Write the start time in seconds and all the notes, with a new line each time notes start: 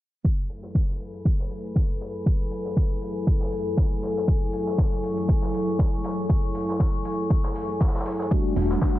0.24 F#3 E4 A4 G#5 B5, kick, tambourine
0.49 open hi-hat, tambourine
0.63 snare
0.74 kick, snare, tambourine
0.89 snare
1.00 open hi-hat, tambourine
1.14 open hi-hat
1.25 kick, open hi-hat
1.39 snare
1.50 open hi-hat, tambourine
1.64 closed hi-hat
1.75 kick, snare, tambourine
2.01 snare, open hi-hat, tambourine
2.26 kick, tambourine
2.39 closed hi-hat
2.51 open hi-hat, tambourine
2.65 snare
2.77 kick, snare, tambourine
3.01 open hi-hat, tambourine
3.27 kick, tambourine
3.40 snare
3.52 open hi-hat, tambourine
3.65 closed hi-hat
3.77 kick, snare, tambourine
4.02 snare, open hi-hat, tambourine
4.17 snare
4.28 C#6, kick, tambourine
4.53 open hi-hat, tambourine
4.67 snare
4.78 kick, snare, tambourine
4.91 snare
5.03 open hi-hat, tambourine
5.17 open hi-hat
5.29 kick, open hi-hat
5.42 snare
5.54 open hi-hat, tambourine
5.68 closed hi-hat
5.79 kick, snare, tambourine
6.04 snare, open hi-hat, tambourine
6.29 kick, tambourine
6.43 closed hi-hat
6.54 open hi-hat, tambourine
6.69 snare
6.80 kick, snare, tambourine
7.05 open hi-hat, tambourine
7.30 kick, tambourine
7.44 snare
7.54 open hi-hat, tambourine
7.69 closed hi-hat
7.80 kick, snare, tambourine
7.87 snare, tambourine
7.95 snare, tambourine
8.00 snare, tambourine
8.06 snare, open hi-hat, tambourine
8.19 snare
8.31 G3 A3 D4 F#4 F#5 A5, kick, tambourine
8.56 E1, open hi-hat, tambourine
8.70 snare
8.82 kick, snare, tambourine
8.95 snare